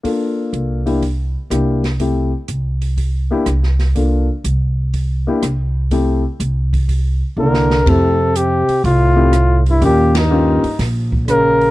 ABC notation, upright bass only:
X:1
M:4/4
L:1/8
Q:"Swing" 1/4=123
K:F
V:1 name="Upright bass" clef=bass
z2 C,,3 z C,,2- | C,, z C,,3 z C,,2- | C,, z C,,3 z C,,2- | C,, z C,,3 z C,,2 |
F,,3 z C,,4 | _E,,3 z B,,,4 |]